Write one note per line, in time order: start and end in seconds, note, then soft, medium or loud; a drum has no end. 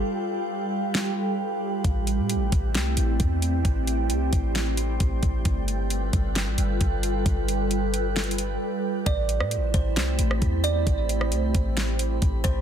0.00 1.81 G3 medium
0.00 1.81 F4 medium
0.00 5.41 G4 medium
0.00 1.81 A4 medium
0.00 3.61 B4 medium
0.00 9.02 G5 medium
0.95 snare loud
1.84 2.20 A1 loud
1.84 9.03 G3 medium
1.84 5.42 A3 medium
1.84 5.42 C4 medium
1.84 5.42 E4 medium
1.84 kick loud
1.84 closed hi-hat medium
2.07 closed hi-hat medium
2.18 2.37 A2 loud
2.30 closed hi-hat medium
2.35 2.51 A1 loud
2.52 2.76 A1 loud
2.52 kick medium
2.52 closed hi-hat medium
2.75 2.96 C2 loud
2.75 snare loud
2.75 closed hi-hat medium
2.97 3.19 A1 loud
2.97 closed hi-hat medium
3.20 3.63 E2 loud
3.20 kick medium
3.20 closed hi-hat medium
3.42 closed hi-hat medium
3.65 4.12 A1 loud
3.65 5.44 C5 medium
3.65 kick loud
3.65 closed hi-hat medium
3.87 closed hi-hat medium
4.10 4.32 C2 loud
4.10 closed hi-hat medium
4.33 4.98 A1 loud
4.33 kick medium
4.33 closed hi-hat medium
4.55 snare loud
4.55 closed hi-hat medium
4.77 closed hi-hat medium
5.00 5.22 A1 loud
5.00 kick medium
5.00 closed hi-hat medium
5.23 5.44 A1 loud
5.23 kick medium
5.23 closed hi-hat medium
5.45 6.10 G1 loud
5.45 9.03 G3 medium
5.45 9.03 F4 medium
5.45 7.24 F4 medium
5.45 9.03 A4 medium
5.45 9.03 B4 medium
5.45 kick loud
5.45 closed hi-hat medium
5.68 closed hi-hat medium
5.90 closed hi-hat medium
6.13 6.48 G1 loud
6.13 kick medium
6.13 closed hi-hat medium
6.35 snare loud
6.35 closed hi-hat medium
6.47 6.58 A1 loud
6.58 6.80 G1 loud
6.58 closed hi-hat medium
6.81 7.24 G1 loud
6.81 kick medium
6.81 closed hi-hat medium
7.03 closed hi-hat medium
7.26 8.57 G1 loud
7.26 9.05 G4 medium
7.26 kick loud
7.26 closed hi-hat medium
7.48 closed hi-hat medium
7.71 closed hi-hat medium
7.94 closed hi-hat medium
8.16 snare loud
8.16 closed hi-hat soft
8.24 closed hi-hat medium
8.31 closed hi-hat medium
8.38 closed hi-hat medium
9.06 9.42 A1 loud
9.06 12.61 G3 medium
9.06 12.61 A3 medium
9.06 12.61 C4 medium
9.06 12.61 E4 medium
9.06 12.61 G4 medium
9.06 12.61 C5 medium
9.06 9.70 D5 loud
9.06 12.61 B5 loud
9.06 kick loud
9.06 closed hi-hat medium
9.29 closed hi-hat medium
9.40 9.58 A2 loud
9.40 cross-stick loud
9.51 closed hi-hat medium
9.57 9.73 A1 loud
9.74 9.98 A1 loud
9.74 10.60 C5 medium
9.74 kick medium
9.74 closed hi-hat medium
9.96 10.18 C2 loud
9.96 snare loud
9.96 closed hi-hat medium
10.19 10.41 A1 loud
10.19 closed hi-hat medium
10.31 cross-stick loud
10.42 10.85 E2 loud
10.42 kick medium
10.42 closed hi-hat medium
10.64 10.85 D5 medium
10.64 closed hi-hat medium
10.87 11.33 A1 loud
10.87 kick loud
10.87 closed hi-hat medium
11.09 closed hi-hat medium
11.21 cross-stick loud
11.32 11.53 C2 loud
11.32 closed hi-hat medium
11.55 12.19 A1 loud
11.55 kick medium
11.55 closed hi-hat medium
11.77 snare loud
11.77 closed hi-hat medium
11.99 closed hi-hat medium
12.22 12.44 A1 loud
12.22 kick medium
12.22 closed hi-hat medium
12.44 12.61 A1 loud
12.44 12.61 C5 medium
12.44 kick medium
12.44 closed hi-hat medium